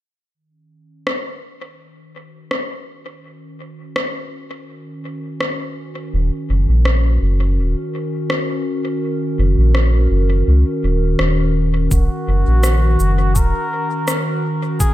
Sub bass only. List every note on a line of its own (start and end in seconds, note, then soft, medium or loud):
6.13 6.30 D#1 medium
6.49 6.66 F#1 medium
6.68 7.18 A#1 medium
7.22 7.59 F#1 medium
7.58 7.75 D#1 medium
9.39 9.55 F#1 medium
9.58 10.08 A#1 medium
10.11 10.43 F#1 loud
10.47 10.64 C#2 medium
10.84 11.15 D#1 medium
11.19 11.88 D#1 medium
11.91 12.08 D#1 medium
12.28 12.45 F#1 medium
12.47 12.97 A#1 medium
13.00 13.37 F#1 medium
13.36 13.53 D#1 medium